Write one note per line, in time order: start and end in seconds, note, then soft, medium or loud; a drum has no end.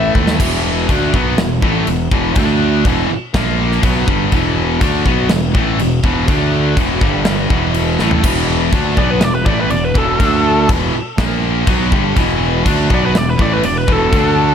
0.00 0.13 A1 medium
0.00 0.38 A2 medium
0.00 0.39 E3 medium
0.00 0.40 A3 medium
0.00 0.11 E5 loud
0.15 0.38 D#2 medium
0.15 kick medium
0.27 snare medium
0.40 0.86 E1 medium
0.40 0.88 E2 medium
0.40 0.89 B2 medium
0.40 0.89 E3 loud
0.40 kick loud
0.40 crash loud
0.40 crash medium
0.89 1.12 D2 loud
0.89 1.13 D3 medium
0.89 1.13 A3 loud
0.89 1.14 D4 loud
0.89 kick loud
0.89 crash medium
1.13 1.37 B1 loud
1.13 1.37 B2 medium
1.13 1.38 F#3 loud
1.13 1.38 B3 loud
1.13 kick medium
1.38 1.61 E1 medium
1.38 1.58 E2 medium
1.38 1.58 B2 medium
1.38 snare loud
1.38 crash medium
1.62 1.86 A1 medium
1.62 1.86 A2 medium
1.62 1.87 E3 medium
1.62 1.87 A3 medium
1.62 kick loud
1.87 2.10 E1 medium
1.87 2.07 E2 medium
1.87 2.07 B2 medium
1.87 crash medium
2.12 2.35 E1 medium
2.12 2.35 E2 medium
2.12 2.37 B2 medium
2.12 2.38 E3 loud
2.12 kick loud
2.35 2.82 D2 medium
2.35 2.85 D3 medium
2.35 2.86 A3 loud
2.35 2.86 D4 loud
2.35 kick loud
2.35 crash medium
2.85 3.08 E1 medium
2.85 3.09 E2 medium
2.85 3.10 B2 medium
2.85 3.10 E3 loud
2.85 kick loud
2.85 crash medium
3.11 muted distorted electric guitar stroke medium
3.11 muted fingered electric bass stroke soft
3.34 3.80 A#1 loud
3.34 3.82 A#2 medium
3.34 3.83 F3 loud
3.34 3.84 A#3 medium
3.34 kick loud
3.34 snare loud
3.34 crash medium
3.72 snare soft
3.82 4.06 B1 loud
3.82 4.07 B2 medium
3.82 4.07 F#3 loud
3.82 4.08 B3 loud
3.82 kick loud
3.82 crash medium
4.07 4.31 G1 medium
4.07 4.31 G2 medium
4.07 4.31 D3 medium
4.07 4.32 G3 loud
4.07 kick loud
4.32 4.78 E1 loud
4.32 4.81 E2 loud
4.32 4.80 B2 loud
4.32 4.80 E3 loud
4.32 kick loud
4.32 crash medium
4.80 5.04 D2 medium
4.80 5.05 D3 medium
4.80 5.05 A3 loud
4.80 5.05 D4 loud
4.80 kick loud
4.80 crash medium
5.05 5.29 B1 loud
5.05 5.29 B2 loud
5.05 5.30 F#3 medium
5.05 5.30 B3 loud
5.05 kick medium
5.29 5.54 E1 medium
5.29 5.50 E2 medium
5.29 5.51 B2 medium
5.29 snare loud
5.29 crash medium
5.55 5.78 A1 medium
5.55 5.79 A2 medium
5.55 5.79 E3 medium
5.55 5.80 A3 loud
5.55 kick loud
5.79 6.03 E1 medium
5.79 5.99 E2 medium
5.79 6.00 B2 medium
5.79 crash medium
6.04 6.27 E1 medium
6.04 6.28 E2 medium
6.04 6.28 B2 loud
6.04 6.29 E3 loud
6.04 kick medium
6.28 6.74 D2 loud
6.28 6.77 D3 loud
6.28 6.77 A3 loud
6.28 6.78 D4 loud
6.28 kick loud
6.28 crash medium
6.77 7.00 E1 loud
6.77 7.00 E2 loud
6.77 7.02 B2 loud
6.77 7.02 E3 loud
6.77 kick loud
6.77 crash medium
7.01 7.48 G1 loud
7.01 7.50 G2 medium
7.01 7.51 D3 medium
7.01 7.51 G3 loud
7.01 kick loud
7.25 snare loud
7.25 crash medium
7.50 7.96 E1 medium
7.50 7.99 E2 medium
7.50 7.99 B2 medium
7.50 8.00 E3 medium
7.50 kick loud
7.74 crash medium
7.99 8.23 A1 medium
7.99 8.24 A2 medium
7.99 8.23 E3 medium
7.99 8.25 A3 loud
7.99 snare medium
8.11 floor tom medium
8.23 8.70 E1 loud
8.23 8.72 E2 loud
8.23 8.71 B2 loud
8.23 8.73 E3 loud
8.23 kick loud
8.23 crash loud
8.23 crash medium
8.72 8.96 D2 loud
8.72 8.97 D3 medium
8.72 8.97 A3 loud
8.72 8.98 D4 loud
8.72 kick loud
8.72 crash medium
8.97 9.21 B1 medium
8.97 9.20 B2 medium
8.97 9.22 F#3 medium
8.97 9.22 B3 loud
8.97 9.10 D5 loud
8.97 kick medium
9.10 9.24 B4 medium
9.21 9.45 E1 medium
9.21 9.41 E2 medium
9.21 9.42 B2 medium
9.21 9.34 D5 loud
9.21 snare loud
9.21 crash medium
9.35 9.46 B4 loud
9.45 9.70 A1 loud
9.45 9.70 A2 medium
9.45 9.70 E3 medium
9.45 9.70 A3 loud
9.45 9.59 D5 medium
9.45 kick loud
9.61 9.71 B4 medium
9.70 9.95 E1 medium
9.70 9.91 E2 medium
9.70 9.91 B2 medium
9.70 9.84 D5 medium
9.70 crash medium
9.84 9.97 B4 medium
9.95 10.19 E1 medium
9.95 10.19 E2 medium
9.95 10.19 B2 medium
9.95 10.20 E3 loud
9.95 10.68 A4 loud
9.95 kick loud
10.20 10.66 D2 medium
10.20 10.68 D3 medium
10.20 10.69 A3 loud
10.20 10.69 D4 loud
10.20 kick medium
10.20 crash medium
10.69 10.92 E1 loud
10.69 10.93 E2 medium
10.69 10.94 B2 loud
10.69 10.94 E3 loud
10.69 kick loud
10.69 crash medium
10.95 muted distorted electric guitar stroke medium
10.95 muted fingered electric bass stroke soft
11.18 11.64 A#1 medium
11.18 11.66 A#2 medium
11.18 11.67 F3 loud
11.18 11.67 A#3 loud
11.18 kick loud
11.18 snare loud
11.18 crash medium
11.67 11.90 B1 loud
11.67 11.91 B2 medium
11.67 11.91 F#3 loud
11.67 11.92 B3 loud
11.67 kick loud
11.67 crash medium
11.91 12.15 G1 loud
11.91 12.16 G2 medium
11.91 12.16 D3 loud
11.91 12.16 G3 loud
11.91 kick loud
12.16 12.62 E1 loud
12.16 12.65 E2 medium
12.16 12.64 B2 loud
12.16 12.64 E3 loud
12.16 kick loud
12.16 crash medium
12.64 12.89 D2 loud
12.64 12.89 D3 medium
12.64 12.89 A3 loud
12.64 12.90 D4 loud
12.64 kick loud
12.64 crash medium
12.89 13.13 B1 loud
12.89 13.13 B2 medium
12.89 13.14 F#3 loud
12.89 13.14 B3 loud
12.89 kick loud
12.94 13.04 D5 loud
13.06 13.17 B4 loud
13.14 13.39 E1 medium
13.14 13.34 E2 medium
13.14 13.34 B2 medium
13.14 13.28 D5 loud
13.14 snare loud
13.14 crash medium
13.30 13.41 B4 medium
13.39 13.62 A1 medium
13.39 13.63 A2 medium
13.39 13.64 E3 medium
13.39 13.64 A3 medium
13.39 13.53 D5 loud
13.39 kick loud
13.53 13.65 B4 loud
13.63 13.87 E1 medium
13.63 13.83 E2 medium
13.63 13.83 B2 medium
13.63 13.76 D5 loud
13.63 crash medium
13.78 13.92 B4 loud
13.87 14.11 E1 medium
13.87 14.11 E2 medium
13.87 14.11 B2 medium
13.87 14.12 E3 loud
13.87 kick loud
13.92 14.54 A4 loud
14.11 14.54 D2 loud
14.11 14.54 D3 loud
14.11 14.54 A3 loud
14.11 14.54 D4 loud
14.11 kick loud
14.11 crash medium